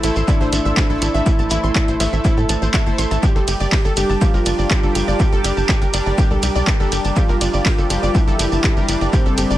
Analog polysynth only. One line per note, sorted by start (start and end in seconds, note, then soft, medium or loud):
0.03 0.87 A3 loud
0.03 0.87 E4 medium
0.03 0.87 A4 loud
0.90 1.97 A3 loud
0.90 1.97 E4 medium
0.90 1.97 A4 loud
2.00 2.84 A3 medium
2.00 2.84 E4 medium
2.00 2.84 A4 loud
2.87 3.22 A3 loud
2.87 3.22 E4 medium
2.87 3.22 A4 loud
3.97 4.80 G3 medium
3.97 4.80 D4 medium
3.97 4.80 G4 loud
4.83 5.91 G3 loud
4.83 5.91 D4 medium
4.83 5.91 G4 loud
5.94 6.77 G3 loud
5.94 6.77 D4 medium
5.94 6.77 G4 loud
6.80 7.87 G3 loud
6.80 7.87 D4 medium
6.80 7.87 G4 loud
7.90 8.74 G3 medium
7.90 8.74 D4 medium
7.90 8.74 G4 loud
8.77 9.58 G3 loud
8.77 9.58 D4 medium
8.77 9.58 G4 loud